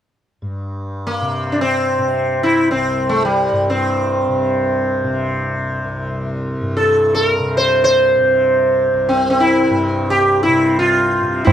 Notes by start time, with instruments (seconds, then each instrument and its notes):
0.42 tanpura G2
1.07 sitar A#3
1.22 tanpura C3
1.52 sitar D4
1.61 sitar C4
1.99 tanpura C3
2.43 sitar E4
2.71 tanpura C2, sitar C4
3.09 sitar A3
3.25 sitar G3
3.52 tanpura G2
3.70 sitar C4
4.28 tanpura C3
5.04 tanpura C3
5.84 tanpura C2
6.61 tanpura G2
6.77 sitar A4
7.15 sitar A4
7.28 sitar A#4
7.39 tanpura C3
7.57 sitar C5
7.84 sitar C5
8.18 tanpura C3
8.94 tanpura C2
9.09 sitar C4
9.30 sitar C4
9.40 sitar E4
9.70 tanpura G2
10.10 sitar G4
10.43 sitar E4
10.48 tanpura C3
10.79 sitar F4
11.23 tanpura C3
11.44 tanpura G2, sitar E4, tabla na, tabla ge